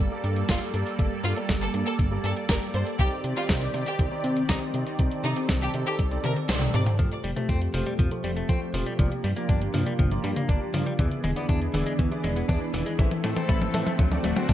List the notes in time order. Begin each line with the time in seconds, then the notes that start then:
Already playing: G3 A#3 A4 D5
0.11 A#3 G4 A4 D5
0.24 G2, closed hi-hat
0.36 closed hi-hat
0.49 G1 A#3 F4 G4 A4 D5, kick, snare, closed hi-hat
0.74 G2 A#3 G4 A4 D5, closed hi-hat
0.86 closed hi-hat
0.99 G1 A#3 G4 A4 D5, kick, closed hi-hat
1.24 G2 F4, closed hi-hat
1.36 A#3 G4 A4 D5, closed hi-hat
1.49 G1, kick, snare, closed hi-hat
1.61 A4, closed hi-hat
1.74 G2 A#3 G4 A4 D5, closed hi-hat
1.86 A4, closed hi-hat
1.99 G1, kick, closed hi-hat
2.11 A#3 G4 A4 D5
2.24 G2 A4, closed hi-hat
2.36 closed hi-hat
2.49 G1 A#3 G4 A4 A#4 D5, kick, snare, closed hi-hat
2.74 G2 A#3 G4 A4 C5 D5, closed hi-hat
2.87 closed hi-hat
2.99 C2 D#3 C4 D#4 G4 D5, kick, closed hi-hat
3.24 C3, closed hi-hat
3.36 C4 D#4 F4 G4 D5, closed hi-hat
3.49 C2, kick, snare, closed hi-hat
3.62 closed hi-hat
3.74 C3 C4 D#4 G4 D5, closed hi-hat
3.86 G4, closed hi-hat
3.99 C2, kick, closed hi-hat
4.11 C4 D#4 G4 D5
4.24 C3, closed hi-hat
4.37 closed hi-hat
4.49 C2 C4 D#4 G4 D5, kick, snare, closed hi-hat
4.74 C3 C4 D#4 G4 D5, closed hi-hat
4.87 closed hi-hat
4.99 C2 C4 D#4 G4 A4 D5, kick, closed hi-hat
5.12 closed hi-hat
5.24 C3 D#4, closed hi-hat
5.36 C4 D#4 G4 D5, closed hi-hat
5.49 C2, kick, snare, closed hi-hat
5.61 G4, closed hi-hat
5.74 C3 C4 D#4 G4 D5, closed hi-hat
5.86 G4, closed hi-hat
5.99 C2, kick, closed hi-hat
6.11 C4 D#4 G4 D5, closed hi-hat
6.24 C3 A#4, closed hi-hat, high tom
6.36 closed hi-hat
6.49 C2 C4 D#4 G4 C5 D5, snare, closed hi-hat, mid tom
6.62 closed hi-hat, mid tom
6.74 C3 C4 D#4 G4 D5, closed hi-hat, mid tom
6.86 closed hi-hat, mid tom
6.99 F2 F3 A3 C4 F4 G4 C5, kick, closed hi-hat, mid tom
7.12 closed hi-hat
7.24 F1 G3, open hi-hat
7.36 A3 F4 G4 C5, closed hi-hat, mid tom
7.49 F2 C4, kick, closed hi-hat
7.61 closed hi-hat
7.74 F1 F3 A3 F4 G4 C5, open hi-hat, mid tom
7.86 G3, closed hi-hat
7.99 F2 F3, kick, closed hi-hat, mid tom
8.11 A3 F4 G4 C5, closed hi-hat
8.24 F1 G3, open hi-hat
8.36 A3, closed hi-hat
8.49 F2 A3 C4 F4 G4 C5, kick, closed hi-hat
8.74 F1 F3 A3 F4 G4 C5, open hi-hat, mid tom
8.86 G3, closed hi-hat
8.99 G1 F3 A#3 D4 F4 G4 D5, kick, closed hi-hat, mid tom
9.12 closed hi-hat
9.24 G2 G3, open hi-hat
9.36 A#3 F4 G4 D5, closed hi-hat
9.49 G1 D4, kick, closed hi-hat
9.62 closed hi-hat
9.74 G2 F3 A#3 F4 G4 D5, open hi-hat, mid tom
9.86 G3, closed hi-hat
9.99 G1 F3, kick, closed hi-hat, mid tom
10.11 A#3 F4 G4 D5, closed hi-hat
10.24 G2 G3, open hi-hat
10.36 A#3, closed hi-hat, mid tom
10.49 G1 A#3 D4 F4 G4 D5, kick, closed hi-hat
10.74 G2 F3 A#3 F4 G4 D5, open hi-hat, mid tom
10.86 G3, closed hi-hat
10.99 E2 E3 B3 D4 E4 G#4 D5, kick, closed hi-hat, mid tom
11.12 closed hi-hat
11.24 E1 G#3, open hi-hat, mid tom
11.36 B3 E4 G#4 D5, closed hi-hat
11.49 E2 D4, kick, closed hi-hat, mid tom
11.62 closed hi-hat
11.74 E1 E3 B3 E4 G#4 D5, open hi-hat, mid tom
11.86 G#3, closed hi-hat
11.99 E2 E3, kick, closed hi-hat, mid tom
12.11 B3 E4 G#4 D5, closed hi-hat
12.24 E1 G#3, open hi-hat, mid tom
12.36 B3, closed hi-hat
12.49 E2 B3 D4 E4 G#4 D5, kick, closed hi-hat, mid tom
12.74 E1 E3 B3 E4 G#4 D5, open hi-hat, mid tom
12.86 G#3, closed hi-hat
12.99 A1 E3 A3 C4 E4 A4 E5, kick, closed hi-hat, mid tom
13.11 closed hi-hat, mid tom
13.24 A2 A3, open hi-hat, mid tom
13.36 C4 E4 A4 E5, closed hi-hat, mid tom
13.49 A1 E4, kick, closed hi-hat, mid tom
13.62 closed hi-hat, mid tom
13.74 A2 E3 C4 E4 A4 E5, open hi-hat, mid tom
13.86 A3, closed hi-hat, mid tom
13.99 D2 D3 F#3 F#4, kick, closed hi-hat, mid tom
14.11 C4 F#4 A4 D5, closed hi-hat, mid tom
14.24 D1 A3, open hi-hat, mid tom
14.36 C4 F#4 A4 D5, closed hi-hat, mid tom
14.49 D2 D4, kick, closed hi-hat, mid tom